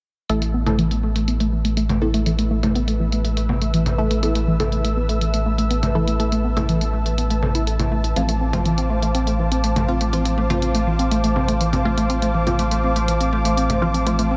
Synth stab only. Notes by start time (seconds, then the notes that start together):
0.30 A3 E4 A4
0.66 A3 E4 A4
2.02 A3 E4 A4
2.26 A3 E4 A4
2.63 A3 E4 A4
3.98 A3 E4 A4
4.23 A3 E4 A4
4.60 A3 E4 A4
5.95 A3 E4 A4
6.20 A3 E4 A4
6.57 A3 E4 A4
8.16 F3 C4 F4
8.53 F3 C4 F4
9.89 F3 C4 F4
10.13 F3 C4 F4
10.50 F3 C4 F4
11.85 F3 C4 F4
12.10 F3 C4 F4
12.47 F3 C4 F4
13.82 F3 C4 F4
14.07 F3 C4 F4